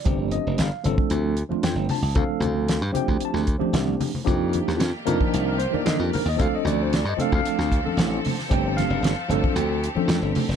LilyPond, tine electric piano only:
\new Staff \with { instrumentName = "Tine electric piano" } { \time 4/4 \key d \phrygian \tempo 4 = 114 << { d''8 ees''8 f''8 r4. g''8 a''8 | f''4. g''8 a''8 r4. | r2 r16 bes'16 c''16 d''16 ees''16 g'16 bes'16 ees''16 | f''16 ees''16 d''16 c''16 d''16 ees''16 f''16 f''4. r8. |
g''8 f''4. g''4. r8 | } \\ { <f a c' d' g'>4~ <f a c' d' g'>16 r16 <f a c' d' a'>4 r16 <f a c' d' f'>4 r16 | <f a c' d' a'>4~ <f a c' d' a'>16 r16 <f a c' d' g'>4 r16 <f a c' d' g'>4 r16 | <f bes d' ees' g'>4~ <f bes d' ees' g'>16 r16 <f bes d' ees' bes'>4 r16 <f bes d' ees' bes'>4 r16 | <f a c' d' a'>4~ <f a c' d' a'>16 r16 <f a c' d' a'>4 r16 <f a c' d' a'>4 r16 |
<f a c' d' g'>4~ <f a c' d' g'>16 r16 <f a c' d' a'>4 r16 <f a c' d' a'>4 r16 | } >> }